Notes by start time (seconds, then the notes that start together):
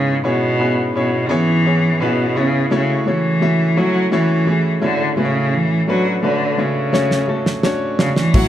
Already playing: G#2 C#3 B3 C#4 E4 G#4 C#5
0.24 B2 B3 C#4 E4 G#4 C#5
0.60 B3 C#4 E4 G#4 B4
0.95 B2 B3 C#4 E4 G#4 C#5
1.29 E3 B3 C#4 E4 G#4 C#5
1.66 B3 C#4 E4 G#4 C#5
2.00 B2 B3 C#4 E4 G#4 B4
2.36 C#3 B3 C#4 E4 G#4 C#5
2.71 C#3 A3 C#4 E4 F#4 C#5
3.06 E3 A3 C#4 E4 F#4 C#5
3.41 A3 C#4 E4 F#4 E5
3.76 F#3 A3 C#4 E4 F#4 C#5
4.12 E3 A3 C#4 E4 F#4 C#5
4.47 A3 C#4 E4 F#4 G#4
4.82 D3 A3 C#4 E4 F#4 C#5
5.17 A2 C#3 A3 C#4 F#4 B4
5.25 C#5
5.54 E3
5.88 F#3 A3 C#4 D4 F#4 B4
6.23 D3 A3 C#4 D4 F#4 B4
6.58 C#3 A3 C#4 F#4 C#5
6.93 A3 C#4 F#4 C#5, snare
7.11 snare
7.28 A3 C#4 F#4 A4
7.46 snare
7.63 A3 C#4 D4 F#4 C#5, snare
7.99 C#3 A3 C#4 D4 F#4 C#5, snare
8.16 E3, snare
8.34 A1 A2 E3 F#3 A3 C#4 E4 F#4 C#5 F#5, kick, open hi-hat